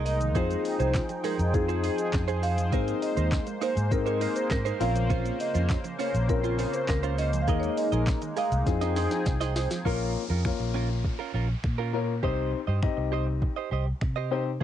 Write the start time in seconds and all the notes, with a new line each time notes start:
Already playing: C2 G#3 A#3 D#4
0.05 G#4 A#4 D#5, open hi-hat, shaker
0.20 D#3, closed hi-hat, shaker
0.35 F2 F3 C4 D#4 F4 G#4 C5 G5, kick, closed hi-hat, shaker
0.50 G#3, closed hi-hat, shaker
0.65 muted clean electric guitar stroke, open hi-hat, shaker
0.79 C2 D#4 G#4 C5, closed hi-hat, shaker
0.94 F4, kick, snare, clap, closed hi-hat, shaker
1.09 F3, muted clean electric guitar stroke, closed hi-hat, shaker
1.24 G#3 D#4 G#4 A#4 C5, open hi-hat, shaker
1.39 F2, muted clean electric guitar stroke, closed hi-hat, shaker
1.54 C4 D#4 F4 G#4, muted clean electric guitar stroke, kick, closed hi-hat, shaker
1.68 D#4 F4 G#4 C5, closed hi-hat, shaker
1.83 D#4 G#4 C5, open hi-hat, shaker
1.98 muted clean electric guitar stroke, closed hi-hat, shaker
2.13 F2 C4, muted clean electric guitar stroke, kick, snare, clap, closed hi-hat, shaker
2.28 D#4 G#4 C5, closed hi-hat, shaker
2.43 D#4 G#4 C5 F5, open hi-hat, shaker
2.58 F3, closed hi-hat, shaker
2.72 G#2 G#3 A#3 C4 D#4 G#4 A#4 C5, kick, closed hi-hat, shaker
2.88 A#3, closed hi-hat, shaker
3.02 D#5, muted clean electric guitar stroke, open hi-hat, shaker
3.17 D#2 D#4 A#4 C5, closed hi-hat, shaker
3.32 G#4, kick, snare, clap, closed hi-hat, shaker
3.47 G#3, muted clean electric guitar stroke, closed hi-hat, shaker
3.61 A#3 D#4 A#4 C5, open hi-hat, shaker
3.76 G#2, muted clean electric guitar stroke, closed hi-hat, shaker
3.91 C4 D#4 G#4 A#4, muted clean electric guitar stroke, kick, closed hi-hat, shaker
4.06 D#4 G#4 A#4 C5, closed hi-hat, shaker
4.21 D#4 A#4 C5, open hi-hat, shaker
4.36 C5, muted clean electric guitar stroke, closed hi-hat, shaker
4.51 G#2 C4 A#4, muted clean electric guitar stroke, kick, snare, clap, closed hi-hat, shaker
4.65 D#4 A#4 C5, closed hi-hat, shaker
4.80 A#1 C#3 C4 C#4 F4 A#4 C5 F5, open hi-hat, shaker
4.95 F3, muted clean electric guitar stroke, closed hi-hat, shaker
5.10 F3 C#4 F4 C5, kick, closed hi-hat, shaker
5.25 A#3, closed hi-hat, shaker
5.40 D#5, muted clean electric guitar stroke, open hi-hat, shaker
5.54 F2 C#4 F4 C5, closed hi-hat, shaker
5.69 F4, muted clean electric guitar stroke, kick, snare, clap, closed hi-hat, shaker
5.84 F3, muted clean electric guitar stroke, closed hi-hat, shaker
5.99 A#3 C#4 F4 C5 C#5, open hi-hat, shaker
6.14 A#1, muted clean electric guitar stroke, closed hi-hat, shaker
6.29 C4 C#4 F4 A#4, muted clean electric guitar stroke, kick, closed hi-hat, shaker
6.43 C#4 F4 C5, closed hi-hat, shaker
6.58 C#4 F4 C5, open hi-hat, shaker
6.73 C5, muted clean electric guitar stroke, closed hi-hat, shaker
6.88 C#2 C4 A#4, muted clean electric guitar stroke, kick, snare, clap, closed hi-hat, shaker
7.03 C#4 F4 C5, closed hi-hat, shaker
7.18 C#4 F4 C5 D#5, open hi-hat, shaker
7.33 F3, muted clean electric guitar stroke, closed hi-hat, shaker
7.41 F5
7.48 D#2 D#3 G#3 A#3 D#4 G#4 A#4 D#5, kick, closed hi-hat, shaker
7.60 G#3 C#5, closed hi-hat, shaker
7.69 D#5
7.77 D#5, muted clean electric guitar stroke, open hi-hat, shaker
7.92 A#1 D#4 G#4 A#4 D#5, closed hi-hat, shaker
8.07 D#5, muted clean electric guitar stroke, kick, snare, clap, closed hi-hat, shaker
8.22 D#3, muted clean electric guitar stroke, closed hi-hat, shaker
8.37 G#3 G#4 A#4 D#5 F5, open hi-hat, shaker
8.52 C2, muted clean electric guitar stroke, closed hi-hat, shaker
8.67 F2 F3 C4 D#4 F4 G#4 G5, muted clean electric guitar stroke, kick, snare, closed hi-hat, shaker
8.81 F4 G#4 C5 D#5, snare, closed hi-hat, shaker
8.96 G#4 C5 D#5, snare, open hi-hat, shaker
9.11 muted clean electric guitar stroke, snare, closed hi-hat, shaker
9.26 C2 C4, muted clean electric guitar stroke, kick, snare, closed hi-hat, shaker
9.41 D#4 G#4 C5 D#5, snare, closed hi-hat, shaker
9.56 G#4 C5 D#5, snare, open hi-hat, shaker
9.71 F3, muted clean electric guitar stroke, snare, closed hi-hat, shaker
9.85 A#1 A#3 C#4 F4 A#4, kick, downlifter
10.15 muted clean electric guitar stroke
10.30 F2 C#4 F4 A#4
10.45 A#3 C#4 F4 A#4, finger snap, kick
10.60 A#1, muted clean electric guitar stroke
10.74 C#4 F4 A#4
10.89 muted clean electric guitar stroke
11.04 muted clean electric guitar stroke, kick
11.19 C#4 F4 A#4
11.34 A#1 C#4 F4 A#4
11.49 muted clean electric guitar stroke
11.63 A#2, finger snap, muted clean electric guitar stroke, kick
11.78 C#4 F4 A#4
11.93 A#3 C#4 F4 A#4
12.08 muted clean electric guitar stroke
12.23 C2 C4 D#4 G4 C5 D#5, kick
12.53 muted clean electric guitar stroke
12.67 G2 G4 C5 D#5
12.82 C4 D#4 G4 D#5, finger snap, muted clean electric guitar stroke, kick
12.97 C2, muted clean electric guitar stroke
13.12 G4 C5 D#5
13.27 muted clean electric guitar stroke
13.42 muted clean electric guitar stroke, kick
13.56 G4 C5 D#5
13.71 C2 G4 C5 D#5
13.86 muted clean electric guitar stroke
14.01 C3, finger snap, muted clean electric guitar stroke, kick
14.16 G4 C5 D#5
14.31 C4 D#4 G4 C5 D#5
14.46 muted clean electric guitar stroke